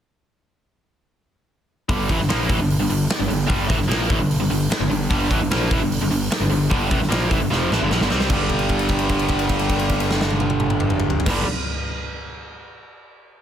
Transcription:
1.89 G1 G2 D3 G3, kick, open hi-hat
2.09 A1 A2 E3, kick, open hi-hat
2.19 G1 G2 D3, snare
2.29 A#1 A#2 F3 A#3, snare, open hi-hat
2.49 A1 A2 E3, kick, open hi-hat
2.59 G1 G2 D3
2.70 open hi-hat
2.79 G1 G2 D3
2.89 G1 G2 D3, open hi-hat
3.10 muted overdriven electric guitar stroke, muted picked electric bass stroke, snare, open hi-hat
3.19 G1 G2 D3
3.28 G1 G2 D3, open hi-hat
3.47 G1 G2 D3 G3, kick, open hi-hat
3.68 A1 A2 E3, kick, snare, open hi-hat
3.79 G1 G2 D3, snare
3.88 A#1 A#2 F3 A#3, snare, open hi-hat
4.09 A1 A2 E3, kick, open hi-hat
4.18 G1 G2 D3
4.31 open hi-hat
4.40 G1 G2 D3
4.50 G1 G2 D3, open hi-hat
4.70 muted picked electric bass stroke, muted overdriven electric guitar stroke, snare, open hi-hat
4.80 G1 G2 D3
4.90 G1 G2 D3, open hi-hat
5.10 G1 G2 D3 G3, kick, open hi-hat
5.30 A1 A2 E3, kick, open hi-hat
5.40 G1 G2 D3
5.50 A#1 A#2 F3 A#3, snare, open hi-hat
5.71 A1 A2 E3, kick, open hi-hat
5.80 G1 G2 D3
5.92 open hi-hat
6.01 G1 G2 D3
6.10 G1 G2 D3, open hi-hat
6.31 muted overdriven electric guitar stroke, muted picked electric bass stroke, snare, open hi-hat
6.40 G1 G2 D3
6.50 G1 G2 D3, open hi-hat
6.70 G1 G2 D3 G3, kick, open hi-hat
6.90 A1 A2 E3, kick, open hi-hat
7.00 G1 G2 D3, snare
7.09 A#1 A#2 F3 A#3, snare, open hi-hat
7.29 A1 A2 E3, kick, open hi-hat
7.40 G1 G2 D3
7.50 F1 F2 C3 F3, snare
7.70 A1 A2 E3, snare
7.80 G1 G2 D3
7.91 A#1 A#2 F3, snare
8.01 G1 G2 D3, snare
8.10 C2 C3 G3 C4, snare
8.20 snare
8.29 G1 G2 D3 G3, kick, crash
8.49 kick, crash
8.59 crash
8.69 kick, crash
8.79 crash
8.89 kick, crash
8.99 crash
9.09 kick, crash
9.19 crash
9.28 kick, crash
9.39 crash
9.49 kick, crash
9.59 crash
9.69 kick, crash
9.79 crash
9.89 kick, crash
10.00 crash
10.11 snare
10.21 snare
10.30 high tom
10.40 high tom
10.50 high tom
10.60 mid tom
10.70 mid tom
10.80 mid tom
10.90 mid tom
11.00 mid tom
11.10 floor tom
11.20 floor tom
11.26 G1 G2 D3 G3, kick, snare, crash

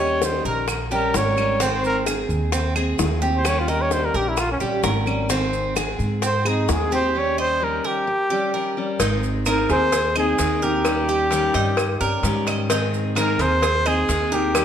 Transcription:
Already playing: D#2 D#3 G3 C#4 G4 C#5
0.00 D#5
0.22 D#3 G3 C#4 G4 C5, high bongo, maracas
0.45 A#1 A#4, maracas
0.68 muted steel-string acoustic guitar stroke, high bongo, claves, maracas
0.91 G3 C#4 G4 A#4, high bongo, maracas
1.13 G#1 D#3 G3 C#4 G4 A#4 C#5, high bongo, low bongo, maracas
1.37 G3 C#4 G4, high bongo, claves, maracas
1.60 D#3 G#3 C4 G#4 C5, high bongo, maracas
1.84 A#4, maracas
2.06 D#3 G#3 C4 G#4, high bongo, claves, maracas
2.29 D#2, maracas
2.52 C4, muted steel-string acoustic guitar stroke, high bongo, maracas
2.76 G#3 C4 G#4, claves, maracas
2.99 D#2 D#3 G#3 C4 G#4, high bongo, low bongo, maracas
3.22 G#3 C4 G4 G#4, maracas
3.37 C5
3.45 D#3 G3 C#4 G4 C#5, high bongo, claves, maracas
3.60 F4
3.68 A#4 D#5, high bongo, maracas
3.82 C#5
3.91 D#3 G3 C#4 G4 C5, high bongo, maracas
4.05 A#4
4.14 A#1 G4 A#4, maracas
4.28 E4
4.37 F4, muted steel-string acoustic guitar stroke, high bongo, claves, maracas
4.51 C#4
4.60 A#1 G3 C#4 G4, high bongo, maracas
4.83 G#1 D#3 G3 C#4 G4 A#4, high bongo, low bongo, maracas
5.06 G3 C#4 G4, high bongo, claves, maracas
5.29 D#3 G#3 C4 G#4, high bongo, maracas
5.53 maracas
5.75 D#3 G#3 C4 G#4, high bongo, claves, maracas
5.99 G#2, maracas
6.22 C4 C5, muted steel-string acoustic guitar stroke, high bongo, maracas
6.45 G#3 C4 D#4 G#4, claves, maracas
6.68 D#2 D#3 G#3 C4 G#4, high bongo, low bongo, maracas
6.72 G#4
6.91 G#3 C4 G4 G#4 C5, maracas
7.14 D#3 G3 C#4 G4
7.18 C#5
7.38 C5 D#5
7.61 D#3 G3 C#4 G4 A#4
7.84 G4 A#4
8.07 muted steel-string acoustic guitar stroke
8.30 G3 C#4 G4
8.54 D#3 G3 C#4 G4 A#4
8.77 G3 C#4 G4
8.99 G#1 D#3 G#3 C4 D#4 G#4, cowbell, maracas
9.23 maracas
9.46 D#3 G#3 C4 D#4 G#4 A#4, cowbell, claves, maracas
9.69 D#2 G#3 C4 G#4 C5, cowbell, maracas
9.92 G#4, muted steel-string acoustic guitar stroke, cowbell, maracas
10.15 G#3 C4 D#4 G#4 D#5, claves, maracas
10.38 D#2 D#3 G#3 C4 G#4, cowbell, maracas
10.62 D#4 G4 A#4, maracas
10.84 D#3 G3 C#4 G4, cowbell, claves, maracas
11.09 G4, maracas
11.30 D#3 G3 C#4 G4 A#4, cowbell, maracas
11.54 G2 G3 C#4 D#4 G4, cowbell, maracas
11.77 muted steel-string acoustic guitar stroke, cowbell, claves, maracas
12.00 G2 G3 C#4 G4 A#4, maracas
12.23 G#2 D#3 G3 C#4 G4, cowbell, maracas
12.47 D#5, cowbell, claves, maracas
12.70 D#3 G#3 C4 D#4 G#4, cowbell, maracas
12.94 maracas
13.15 D#3 G#3 C4 D#4 G#4 A#4, cowbell, claves, maracas
13.39 D#2 G#3 C4 G#4 C5, cowbell, maracas
13.62 G#4, muted steel-string acoustic guitar stroke, cowbell, maracas
13.85 G#3 C4 D#4 G#4 D#5, claves, maracas
14.08 D#2 D#3 G#3 C4 G#4, cowbell, maracas
14.31 D#4 G4 A#4, maracas
14.54 D#3 G3 C#4 G4, cowbell, claves, maracas

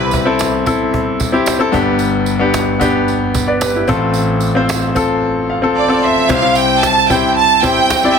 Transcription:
Already playing: C2 C3 E3 C4 E4 G4 A4 B4
0.11 cajon bass, tambourine
0.25 C4 E4 A4
0.39 cajon slap, tambourine
0.66 C4 E4 A4, cajon bass, tambourine
0.94 cajon bass
1.20 cajon bass, tambourine
1.32 C4 E4 G4, cajon slap
1.46 cajon slap, tambourine
1.59 C4 E4 A4, cajon slap
1.72 G1 G2 B3 D4 G4, cajon bass, tambourine
1.99 cajon slap, tambourine
2.26 cajon slap, tambourine
2.39 B3 D4 G4
2.54 cajon slap, tambourine
2.80 B3 D4 G4, cajon bass, tambourine
3.08 cajon slap, tambourine
3.34 cajon bass, tambourine
3.48 B4 D5, cajon slap
3.61 G4 B4, cajon slap, tambourine
3.75 E4 G4, cajon slap
3.87 A1 A2 C4 F4 A4, cajon bass, tambourine
4.14 tambourine
4.41 cajon slap, tambourine
4.55 C4 F4 C5
4.69 cajon slap, tambourine
4.95 C4 F4 A4, cajon bass, cajon slap, tambourine
5.50 F5
5.62 C4 F4 A4
5.76 D5 A5
5.88 C4 F4 A4
6.03 E5 C6
6.29 C2 C3 C4 E4 G4 C5 F5, cajon bass, tambourine
6.42 C4 E4 G4 C5
6.55 G5, tambourine
6.83 A5, cajon slap, tambourine
7.09 C4 E4 G4 C5 G5, cajon bass, tambourine
7.36 A5
7.62 C4 E4 G4 C5 G5, cajon bass, tambourine
7.90 cajon slap, tambourine
8.04 C4 E4 G4 D5
8.15 E5

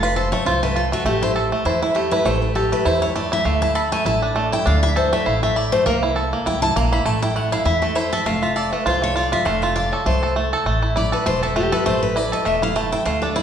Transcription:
Already playing: F1 A3 A4
0.03 F4 B4
0.16 A4 C5
0.32 A3 C#5
0.46 C2 F4 C5
0.63 A3 B4
0.76 F4 A4
0.92 A3 F#4
1.05 A1 A3 G4
1.22 E4 C5
1.36 A4
1.52 A3
1.65 E2 E4 C5
1.82 E4
1.95 A3 G4
2.11 E4 B4
2.25 A1 A3 C5
2.42 E4
2.55 G4 A4
2.72 A3 B4
2.85 E2 E4 C5
3.02 E4 C#5
3.16 A3 D5
3.32 E4 E5
3.45 D2 A3 F5
3.62 E4 A5
3.75 A4 B5
3.92 A3 G#5
4.05 A1 E4 A5
4.22 D4
4.36 A3
4.52 E4 G5
4.66 D2 D4 F5
4.83 E4 E5
4.96 A4 C5
5.13 A3 E5
5.26 A1 E4 F5
5.43 A3 E5
5.56 E4 D5
5.72 A3 C5
5.86 C2 A#3 A#4
6.03 E4
6.16 A4
6.33 A#3
6.46 C2 E4 G5
6.62 E4 A5
6.76 A#1 A#3 A#5
6.92 E4 B5
7.05 A1 A3 A5
7.22 E4 G5
7.36 A3 F#5
7.52 E4 F5
7.65 E2 E4 E5
7.82 A3 A4
7.95 E4 C5
8.13 A4 E5
8.26 F1 A3 F5
8.42 F4 E5
8.56 A4 D5
8.73 A3 B4
8.86 C2 F4 C5
9.02 A3 C#5
9.16 F4 D5
9.32 F4 E5
9.45 F1 A3 F5
9.62 F4 E5
9.76 F4 D5
9.92 A4 C#5
10.06 C2 A3 C5
10.23 A4
10.36 A3
10.53 A4
10.66 A1 A3
10.82 E4
10.96 E4 D5
11.12 A4 B4
11.26 E1 A3 C5
11.43 E4 A4
11.56 A3 G4
11.72 A4 B4
11.85 A1 A3 C5
12.03 B4
12.16 E4 D5
12.32 A4 D#5
12.45 E1 A3 E5
12.62 E4 F5
12.76 A3 A5
12.92 E4 G5
13.05 D2 A3 F5
13.22 D4 A4
13.36 E4 D5

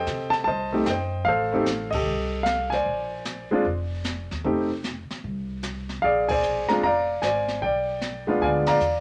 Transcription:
Already playing: G4 A4 C5 D#5 G5
0.06 C3, snare, hi-hat pedal
0.30 A5, snare
0.44 C2 C5 D#5 A5, brush sweep, kick
0.72 A3 C4 D#4 G4
0.86 F#2 D#5 G5, snare, hi-hat pedal
0.90 C5
1.25 A1 A4 C5 F5, brush sweep, kick
1.52 A3 C4 D#4 G4
1.66 snare, hi-hat pedal
1.91 G1 G4 A4 D#5, kick, ride
2.05 C2, brush sweep
2.43 F5, snare, hi-hat pedal
2.70 C5 D5 G#5, snare
2.86 A#1, brush sweep, kick
3.25 snare, hi-hat pedal
3.51 G#3 C4 D4 F4
3.65 F1, brush sweep, kick
4.04 snare, hi-hat pedal
4.31 D#2, snare
4.44 F1 A3 C4 D#4 G4, brush sweep, kick
4.84 snare, hi-hat pedal
5.11 muted upright bass stroke, snare
5.24 C2, brush sweep, kick
5.63 snare, hi-hat pedal
5.89 snare
6.02 A#1 G#4 D5 F5, brush sweep, kick
6.28 C5 D5 G#5, kick, ride
6.43 hi-hat pedal
6.69 G#3 C4 D4 F4 A#5, muted upright bass stroke, snare
6.82 F1 D5 F5 A#5, brush sweep, kick
7.22 G#1 C5 D5 G#5, snare, hi-hat pedal
7.48 snare
7.62 B1 D5 G5, brush sweep, kick
8.01 snare, hi-hat pedal
8.27 G#3 B3 D4 F4
8.41 D2 D5 F5 G#5, brush sweep, kick
8.66 D5 F5 A#5, snare, ride
8.80 E2, hi-hat pedal

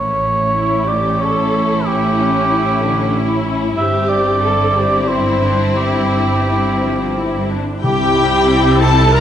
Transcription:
Already playing: A1 A2 C#4 E4 C#5
0.54 E4
0.87 G4 D5
1.20 A4 C#5
1.86 E4 G4
2.18 C#4
2.49 E4
2.82 D3
3.14 E4
3.77 G1 G2 C4 E4 G4 E5
4.09 D5
4.41 A4
4.75 G4
5.07 E4 C5
5.42 D4
5.77 E4 G4
6.46 E4
6.81 F3
7.15 E4
7.49 D4
7.82 C2 C3 G3 C4 E4 G4 G5
8.80 A4 A5
9.12 A#4 A#5

